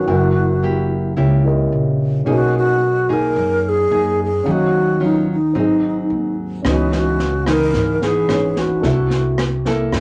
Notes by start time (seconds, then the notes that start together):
Already playing: F#4 B4
0.05 F#1 F#3 A#3 E4 G5
0.09 E4 A#4 F#5
0.63 A#3 E4 G4
1.16 C#2 C#3 A#3 E4 G4
1.44 E4 G4 A#4 D#5
1.72 A#1
2.25 B1 B2 A#3 C#4 D#4 G#4 A#4
2.30 F#4 D#5
2.58 F#4
3.09 A#3 D#4 G#4 A#4
3.36 F#2
3.69 G#4
3.91 F#2 A#3 D#4 G#4
4.23 G#4
4.43 D#2 D#3 F#3 C#4 F5
4.49 F#4 D#5
5.00 F#3 C#4 F4
5.04 D#4
5.32 D#4
5.54 G#1 G#2 F#3 C4 D#4 F#4
5.58 G#4 D#5
6.10 D#2
6.62 C#2 C#3 E3 B3 C#4 D#4, kick, cross-stick, snare
6.67 F#4 D#5
6.92 F#4, snare
7.19 snare
7.46 E3 B3 D#4 A#4, kick, cross-stick, snare
7.73 G#1 G#2, kick, snare
8.02 E3 B3 D#4 G#4, snare
8.28 G#1 C#4 B4 C#5, cross-stick, snare
8.56 F#4, kick, snare
8.80 C2 C3 A#3 D4 E4 A4, kick, snare
8.86 E5
9.10 snare
9.38 cross-stick, snare
9.65 A#3 E4 A4, kick, snare
9.92 G2, kick, cross-stick, snare